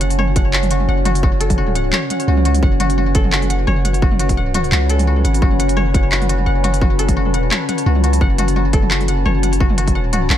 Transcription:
0.00 0.87 F#1 loud
0.00 10.38 C#4 medium
0.00 0.53 F#4 medium
0.00 10.38 F#4 medium
0.00 1.22 A4 medium
0.00 2.21 C#5 medium
0.00 0.36 F#5 medium
0.00 0.78 A5 medium
0.00 closed hi-hat medium
0.10 open hi-hat medium
0.18 1.84 C#5 loud
0.18 mid tom medium
0.36 0.88 F#5 medium
0.36 kick loud
0.36 closed hi-hat medium
0.36 mid tom medium
0.53 0.71 F#4 medium
0.53 clap loud
0.63 mid tom medium
0.63 open hi-hat soft
0.71 1.05 F#4 medium
0.71 closed hi-hat medium
0.75 6.36 F#5 medium
0.80 mid tom medium
0.88 1.92 F#1 medium
0.88 1.75 F#5 medium
1.05 1.23 F#4 loud
1.05 closed hi-hat medium
1.05 mid tom medium
1.15 open hi-hat medium
1.23 1.57 F#4 medium
1.23 kick loud
1.23 mid tom medium
1.40 3.15 A4 medium
1.40 closed hi-hat medium
1.50 kick medium
1.50 mid tom medium
1.50 open hi-hat medium
1.58 2.28 F#4 medium
1.68 mid tom medium
1.75 2.10 F#5 medium
1.75 closed hi-hat medium
1.93 3.59 C#5 loud
1.93 clap loud
1.93 mid tom medium
2.10 10.38 B4 medium
2.10 2.63 F#5 medium
2.10 closed hi-hat medium
2.10 mid tom medium
2.20 open hi-hat medium
2.28 2.61 C#2 loud
2.28 2.45 F#4 medium
2.37 mid tom medium
2.45 2.80 F#4 medium
2.45 closed hi-hat medium
2.55 mid tom medium
2.55 open hi-hat medium
2.63 3.66 F#1 loud
2.63 3.50 F#5 medium
2.63 kick loud
2.80 2.97 F#4 loud
2.80 closed hi-hat medium
2.80 mid tom medium
2.90 open hi-hat medium
2.98 3.32 F#4 medium
2.98 mid tom medium
3.15 4.89 A4 medium
3.15 kick loud
3.15 closed hi-hat medium
3.25 mid tom medium
3.32 4.02 F#4 medium
3.32 clap loud
3.42 mid tom medium
3.42 open hi-hat soft
3.50 3.84 F#5 medium
3.50 closed hi-hat medium
3.67 4.71 F#1 loud
3.67 5.33 C#5 loud
3.67 mid tom medium
3.85 4.37 F#5 medium
3.85 closed hi-hat medium
3.85 mid tom soft
3.94 open hi-hat medium
4.02 4.19 F#4 medium
4.02 kick loud
4.12 mid tom medium
4.19 4.54 F#4 medium
4.19 closed hi-hat medium
4.29 kick medium
4.29 mid tom medium
4.29 open hi-hat medium
4.37 5.24 F#5 medium
4.54 4.72 F#4 loud
4.54 closed hi-hat medium
4.54 mid tom medium
4.64 open hi-hat soft
4.72 5.23 C#2 loud
4.72 5.07 F#4 medium
4.72 clap loud
4.72 mid tom medium
4.90 6.80 A4 medium
4.90 closed hi-hat medium
4.99 mid tom medium
4.99 open hi-hat medium
5.07 5.42 F#4 medium
5.17 mid tom soft
5.24 5.41 G#1 loud
5.24 5.59 F#5 medium
5.24 closed hi-hat medium
5.34 open hi-hat medium
5.42 6.45 F#1 loud
5.42 6.11 F#4 medium
5.42 kick loud
5.52 mid tom medium
5.59 5.94 F#5 medium
5.59 closed hi-hat medium
5.69 open hi-hat medium
5.77 7.42 C#5 loud
5.77 mid tom medium
5.94 6.46 F#5 medium
5.94 kick loud
5.94 closed hi-hat medium
5.94 mid tom medium
6.12 6.29 F#4 medium
6.12 clap loud
6.22 mid tom medium
6.22 open hi-hat soft
6.29 6.63 F#4 medium
6.29 closed hi-hat medium
6.34 10.38 A5 medium
6.39 mid tom soft
6.46 7.19 F#1 medium
6.46 7.34 F#5 medium
6.64 6.81 F#4 loud
6.64 closed hi-hat medium
6.64 mid tom medium
6.74 open hi-hat medium
6.82 7.16 F#4 medium
6.82 kick loud
6.82 mid tom medium
6.99 8.73 A4 medium
6.99 closed hi-hat medium
7.09 kick medium
7.09 mid tom medium
7.09 open hi-hat medium
7.17 7.50 F1 medium
7.17 7.86 F#4 medium
7.26 mid tom medium
7.34 7.68 F#5 medium
7.34 closed hi-hat medium
7.51 9.17 C#5 loud
7.51 clap loud
7.51 mid tom medium
7.69 8.21 F#5 medium
7.69 closed hi-hat medium
7.69 mid tom medium
7.78 open hi-hat medium
7.86 8.20 C#2 loud
7.86 8.03 F#4 medium
7.96 mid tom medium
8.04 8.38 F#4 medium
8.04 closed hi-hat medium
8.13 mid tom medium
8.13 open hi-hat medium
8.21 9.24 F#1 loud
8.21 9.08 F#5 medium
8.21 kick loud
8.38 8.56 F#4 loud
8.38 closed hi-hat medium
8.38 mid tom medium
8.48 open hi-hat medium
8.56 8.90 F#4 medium
8.56 mid tom medium
8.73 10.38 A4 medium
8.73 kick loud
8.73 closed hi-hat medium
8.83 mid tom medium
8.91 9.60 F#4 medium
8.91 clap loud
9.01 mid tom medium
9.01 open hi-hat soft
9.08 9.43 F#5 medium
9.08 closed hi-hat medium
9.25 10.29 F#1 loud
9.25 10.38 C#5 loud
9.25 mid tom medium
9.43 9.95 F#5 medium
9.43 closed hi-hat medium
9.43 mid tom medium
9.53 open hi-hat medium
9.60 9.77 F#4 medium
9.60 kick loud
9.70 mid tom medium
9.78 10.12 F#4 medium
9.78 closed hi-hat medium
9.88 kick medium
9.88 mid tom medium
9.88 open hi-hat medium
9.95 10.38 F#5 medium
10.13 10.30 F#4 loud
10.13 closed hi-hat medium
10.13 mid tom medium
10.30 10.38 A1 loud
10.30 10.38 F#4 medium
10.30 clap loud
10.30 mid tom medium

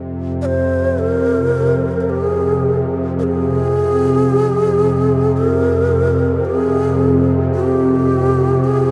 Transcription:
0.00 8.91 F2 medium
0.00 8.91 C3 medium
0.42 1.00 C5 medium
0.42 0.46 D5 medium
0.99 2.00 A#4 loud
2.00 2.11 A#4 medium
2.10 2.24 G4 medium
2.24 2.91 G#4 medium
3.19 3.24 A#4 loud
3.23 5.38 G#4 loud
5.37 5.49 A4 loud
5.49 6.47 A#4 loud
6.45 6.57 G4 medium
6.57 7.27 G#4 medium
7.55 8.65 G4 loud
8.64 8.91 G#4 medium

